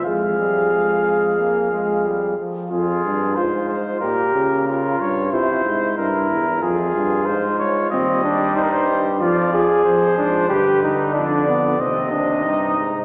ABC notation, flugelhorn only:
X:1
M:4/4
L:1/8
Q:1/4=92
K:Fm
V:1 name="Flugelhorn"
A6- A z | F2 F2 G2 F2 | =E2 E2 F4 | C =D E z F A2 D |
G E =D =B, C D E2 |]